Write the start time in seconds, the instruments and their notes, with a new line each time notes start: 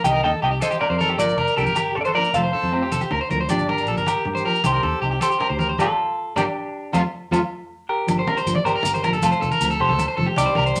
0.04 fingered electric bass C2, steel-string acoustic guitar G3 C4 D#4, clean electric guitar G4 D#5 G5, trumpet D#5, muted conga, high conga, low agogo, maracas
0.14 clean electric guitar A#4
0.23 fingered electric bass D#2, clean electric guitar A4 D#5 G5, trumpet D#5, low conga
0.34 high conga, low conga
0.42 fingered electric bass C2, steel-string acoustic guitar G3 C4 D#4, clean electric guitar G4 D#5 G5, trumpet D#5, low agogo
0.51 clean electric guitar G4, low conga
0.61 clean electric guitar A4 C5 D#5, trumpet C5, muted conga, maracas
0.71 clean electric guitar G4, high conga, maracas
0.81 clean electric guitar A#4 D5, trumpet A#4, low conga, low agogo
0.90 fingered electric bass F2, clean electric guitar C5
0.99 steel-string acoustic guitar G3 C4 D#4, clean electric guitar A4 A#4 C5, high conga, maracas
1.03 trumpet A4
1.09 clean electric guitar G4
1.17 fingered electric bass G1, steel-string acoustic guitar F3 A#3 D4, clean electric guitar A#4 D5, muted conga, low conga, low agogo, maracas
1.22 trumpet A#4
1.29 maracas
1.37 fingered electric bass F1, clean electric guitar A#4, high conga, low conga, low agogo
1.47 maracas
1.57 fingered electric bass C2, steel-string acoustic guitar F3 A#3 D4, clean electric guitar G4 A4 A#4, maracas
1.61 trumpet G4
1.66 fingered electric bass G1, clean electric guitar A#4, high conga, maracas
1.75 clean electric guitar G4 A#4, muted conga, low agogo, maracas
1.80 trumpet G4
1.87 low conga
1.95 clean electric guitar A4 C5, trumpet A4, low conga
2.01 trumpet A#4, clean electric guitar D5
2.05 trumpet A4, clean electric guitar A4 C5, high conga, maracas
2.14 steel-string acoustic guitar F3 A#3 D4, clean electric guitar A#4 D5, trumpet A#4, low agogo
2.24 maracas
2.33 fingered electric bass F1, steel-string acoustic guitar F3 A3 C4, clean electric guitar A4 C5 F5, trumpet C5, muted conga, high conga, low agogo, maracas
2.44 clean electric guitar C5
2.53 clean electric guitar A4, low conga
2.63 fingered electric bass F2, high conga, low conga
2.72 steel-string acoustic guitar F3 A3 C4, clean electric guitar C4, low agogo
2.82 clean electric guitar G4, low conga
2.92 fingered electric bass F1, clean electric guitar A4, muted conga, maracas
3.01 clean electric guitar G4, high conga, maracas
3.11 fingered electric bass D2, clean electric guitar A#4, low conga, low agogo
3.21 clean electric guitar C5
3.29 fingered electric bass D2, steel-string acoustic guitar F3 A3 C4, clean electric guitar A#4, high conga, maracas
3.41 clean electric guitar C5
3.48 fingered electric bass G1, steel-string acoustic guitar F3 A#3 D4, trumpet D4, clean electric guitar D4 G4 D5, muted conga, low conga, low agogo, maracas
3.59 fingered electric bass G1, maracas
3.69 clean electric guitar A#4, high conga, low conga, low agogo
3.78 maracas
3.87 fingered electric bass A#1, steel-string acoustic guitar F3 A#3 D4, clean electric guitar A4, maracas
3.97 fingered electric bass G1, clean electric guitar A#4, high conga, maracas
4.06 clean electric guitar G4 A#4, trumpet G4, muted conga, low agogo, maracas
4.16 low conga
4.25 fingered electric bass G2, low conga
4.35 clean electric guitar C5, high conga, maracas
4.44 steel-string acoustic guitar F3 A#3 D4, clean electric guitar A#4, low agogo
4.55 maracas
4.64 fingered electric bass C2, steel-string acoustic guitar C4 D#4, clean electric guitar G4 C5, trumpet G4, muted steel-string acoustic guitar stroke, muted conga, high conga, low agogo, maracas
4.74 clean electric guitar A#4
4.83 fingered electric bass D#2, clean electric guitar A4, low conga
4.93 high conga, low conga
5.01 fingered electric bass C2, steel-string acoustic guitar G3 C4 D#4, clean electric guitar G4, low agogo
5.11 clean electric guitar G4, low conga
5.21 clean electric guitar G4 A4 C5, trumpet G4, muted conga, maracas
5.30 clean electric guitar G4, maracas
5.40 clean electric guitar A#4, low conga, low agogo
5.50 fingered electric bass D2, clean electric guitar C5
5.58 steel-string acoustic guitar C4, clean electric guitar A#4, muted steel-string acoustic guitar stroke, high conga, maracas
5.69 clean electric guitar C5
5.78 fingered electric bass G1, steel-string acoustic guitar G3 A#3 D4, clean electric guitar F4 G4 A4 A#4 D5, trumpet G4, high conga, low agogo, maracas
6.36 fingered electric bass G1, steel-string acoustic guitar G3 A#3 D4, clean electric guitar D4 G4 A#4 D5, trumpet G4, high conga, low agogo, maracas
6.92 fingered electric bass F2, steel-string acoustic guitar F3 A3 C4, clean electric guitar F4 A4 C5, trumpet F4, high conga, low agogo, maracas
7.31 fingered electric bass F2, steel-string acoustic guitar F3 A3 C4, clean electric guitar F4 A4 C5, trumpet F4, high conga, low agogo, maracas
7.89 clean electric guitar G4 A#4
8.07 fingered electric bass G1, steel-string acoustic guitar F3 A#3 D4, muted conga, low agogo, maracas
8.19 clean electric guitar C5
8.27 clean electric guitar A#4, high conga, low conga, low agogo
8.37 clean electric guitar C5, low conga, maracas
8.45 fingered electric bass G1, steel-string acoustic guitar F3 A#3 D4, low conga, maracas
8.55 clean electric guitar D5, muted conga, high conga
8.64 fingered electric bass G1, clean electric guitar G4 A#4 C5, low conga, low agogo, maracas
8.75 clean electric guitar A#4
8.83 fingered electric bass G1, low conga, maracas
8.94 clean electric guitar C5, high conga, low conga, maracas
9.04 steel-string acoustic guitar F3 A#3 D4, clean electric guitar A#4, muted conga, low conga, low agogo, maracas
9.12 fingered electric bass G1, clean electric guitar A4, maracas
9.22 fingered electric bass F1, steel-string acoustic guitar F3 A3 C4, clean electric guitar F4 A4, high conga, low conga, low agogo, maracas
9.32 clean electric guitar C5, maracas
9.41 fingered electric bass F1, clean electric guitar A4, low conga, maracas
9.51 clean electric guitar A#4, muted conga, high conga, maracas
9.60 fingered electric bass D2, steel-string acoustic guitar F3 A3 C4, low agogo, maracas
9.70 clean electric guitar A4
9.80 fingered electric bass F1, clean electric guitar G4 A4 C5
9.88 fingered electric bass D2, clean electric guitar A4, high conga
9.99 muted conga, low conga, low agogo, maracas
10.08 clean electric guitar C5
10.17 fingered electric bass F1, steel-string acoustic guitar F3 A3 C4, clean electric guitar A4, high conga
10.26 clean electric guitar G4, low conga
10.36 fingered electric bass C2, steel-string acoustic guitar G3 C4 D#4, clean electric guitar G4 D5, muted conga, low agogo, maracas
10.46 clean electric guitar C5
10.55 fingered electric bass C2, clean electric guitar A#4, high conga, low conga, low agogo
10.65 clean electric guitar C5, low conga, maracas
10.75 fingered electric bass A1, steel-string acoustic guitar G3 C4, low conga, maracas